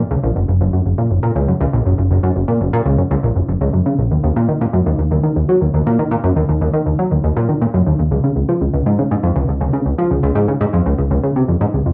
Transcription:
analog synth bass
0.11 C#2
0.23 A#1
0.36 F#1
0.48 F#1
0.61 F#1
0.73 F#2
0.86 F#1
0.98 A#2
1.11 F#1
1.23 A#2
1.36 C#2
1.48 F#2
1.61 C#2
1.73 A#1
1.86 F#1
1.98 F#1
2.11 F#1
2.23 F#2
2.36 F#1
2.48 A#2
2.61 F#1
2.73 A#2
2.86 C#2
2.98 F#2
3.11 C#2
3.23 A#1
3.36 F#1
3.48 F#1
3.61 C#2
3.73 F#2
3.86 C#3
3.98 A#1
4.11 D#2
4.24 D#2
4.36 A#2
4.49 D#3
4.61 A#2
4.73 F#2
4.86 D#2
4.99 D#2
5.11 D#2
5.24 D#3
5.36 D#2
5.49 F#3
5.62 D#2
5.74 D#2
5.87 A#2
5.99 D#3
6.11 A#2
6.24 F#2
6.36 D#2
6.49 D#2
6.61 D#2
6.74 D#3
6.86 D#2
6.99 F#3
7.12 D#2
7.24 D#2
7.36 A#2
7.49 D#3
7.61 A#2
7.74 F#2
7.86 D#2
7.99 D#2
8.11 C#2
8.24 C#3
8.36 C#2
8.49 F3
8.61 C#2
8.74 C#2
8.86 G#2
8.99 C#3
9.11 G#2
9.23 F2
9.36 C#2
9.48 C#2
9.61 C#2
9.73 C#3
9.86 C#2
9.98 F3
10.11 C#2
10.23 C#2
10.36 G#2
10.48 C#3
10.61 G#2
10.74 F2
10.86 C#2
10.99 C#2
11.11 C#2
11.24 C#3
11.36 C3
11.48 F2
11.61 G#2
11.74 C#2
11.86 F2

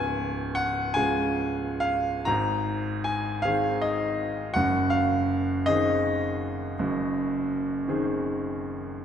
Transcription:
grand piano
Already playing: C#1 C#2 G#5
0.55 F#5
0.94 C#3 G#3 F4 G#5
1.80 F5
2.25 G#1 G#2 A#5
3.04 G#5
3.42 D#3 C4 G#4 F5
3.82 D#5
4.54 F#1 F#2 F#5
4.90 F5
5.66 D#3 C4 G#4 D#5
6.79 F#1 F#2
7.88 D#3 C4 G#4

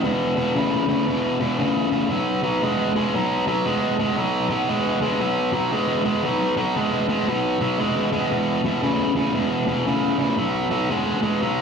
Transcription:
overdriven electric guitar
0.04 E2 B2
0.36 E2 B2
0.55 E2 C#3
0.88 E2 C#3
1.07 E2 B2
1.40 E2 B2
1.59 E2 C#3
1.91 E2 C#3
2.10 B2 F#3
2.43 B2 F#3
2.63 B2 G#3
2.96 B2 G#3
3.15 B2 F#3
3.47 B2 F#3
3.66 B2 G#3
3.99 B2 G#3
4.17 B2 F#3
4.50 B2 F#3
4.69 B2 G#3
5.01 B2 G#3
5.20 B2 F#3
5.53 B2 F#3
5.72 B2 G#3
6.05 B2 G#3
6.24 B2 F#3
6.57 B2 F#3
6.76 B2 G#3
7.09 B2 G#3
7.28 B2 F#3
7.61 B2 F#3
7.79 B2 G#3
8.12 B2 G#3
8.31 E2 B2
8.64 E2 B2
8.82 E2 C#3
9.15 E2 C#3
9.34 E2 B2
9.67 E2 B2
9.86 E2 C#3
10.18 E2 C#3
10.37 B2 F#3
10.71 B2 F#3
10.90 B2 G#3
11.22 B2 G#3
11.42 B2 F#3

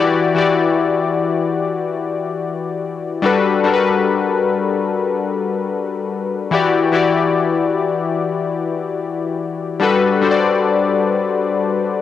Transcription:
synth keys
Already playing: E3 E4 F#4 G4 D5
0.35 E3 E4 F#4 G4 D5
3.22 G3 D4 F#4 A4 B4
3.63 G3 D4 F#4 A4 A#4
3.73 B4
6.51 E3 E4 F#4 G4 D5
6.92 E3 E4 F#4 G4 D5
9.80 G3 D4 F#4 A4 B4
10.21 G3 D4 F#4 A4 C5
10.31 D5

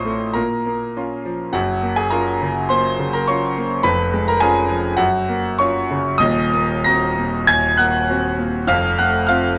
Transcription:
grand piano
Already playing: A1 A2 C4 F4 C5 C#5 D#5 C6 C#6 D#6
0.05 A3
0.33 A#2 A#4 A#5
0.66 A#3
0.97 C#4 F4
1.25 F3
1.53 F#1 F#2 F#4 F#5
1.83 A#3
1.96 G#4 G#5
2.10 C#4 F4 A#4 A#5
2.41 C#3
2.69 A#3 C5 C6
2.99 C#3
3.13 A#4 A#5
3.27 C#4 F4 C#5 C#6
3.58 A#3
3.83 F1 F2 B4 B5
4.13 G#3
4.28 A#4 A#5
4.40 C#4 F4 G#4 G#5
4.70 F3
4.97 F#2 F#4 F#5
5.29 A#3
5.59 C#4 F4 C#5 C#6
5.91 C#3
6.18 D#1 D#2 D#5 D#6
6.53 A#3
6.84 C4 F#4 A#5 A#6
7.18 A#2
7.47 D#2 G#5 G#6
7.77 A#3 F#5 F#6
8.10 C4 F#4
8.39 A#2
8.67 F1 F2 F5 F6
8.98 A3 F#5 F#6
9.27 C4 F4 F5 F6

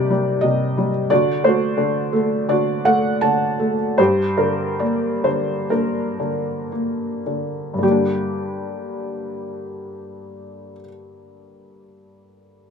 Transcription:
felt piano
Already playing: C3 G3 D#4 G4 A#4 C5 D5
0.10 G3
0.41 C3 D#5
0.78 G3
1.10 D3 F#4 D5
1.44 A3 F#4 C5
1.77 D3
2.13 A3
2.49 D3 F#4 D5
2.85 A3 F#5
3.21 D3 A5
3.59 A3
3.98 G2 G4 C5
4.37 D3 A#4
4.79 A#3 D5
5.24 D3 C5
5.69 A#3 D4 A#4
6.19 D3
6.72 A#3
7.26 D3
7.74 G2
7.78 D3
7.83 G3 G4
7.87 A#3
7.91 D4

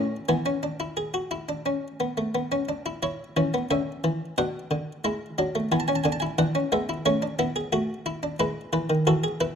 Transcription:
harpsichord
Already playing: A2 C#4 F#5
0.29 E3 B3 G#5
0.46 C#4
0.63 D4
0.80 E4
0.97 G#4
1.14 F#4
1.31 E4
1.49 D4
1.66 C#4
2.00 B3
2.17 A3
2.35 B3
2.52 C#4
2.69 D4
2.86 E4
3.03 E4 C#5
3.37 E3 C#4
3.54 B3
3.71 D3 C#4 E5
4.04 E3
4.38 B2 D4 F#5
4.71 D3
5.04 G#3 E4
5.38 F#3 D4
5.55 A3
5.72 E3 B3 G#5
5.80 A5
5.88 C#4 G#5
5.95 A5
6.04 D3 D4 G#5
6.12 A5
6.20 E4 G#5
6.38 E3 D4 F#5
6.55 C#4
6.72 G#3 B3 E5
6.89 E4
7.06 A3 C#4 C#5
7.22 D4
7.39 B3 E4
7.56 G#4
7.73 A3 F#4
8.06 E4
8.23 D4
8.40 G#3 E4 B4
8.73 E3 B4
8.90 D#3
9.07 E3 F#4 A4
9.24 G#4
9.41 E4 B4

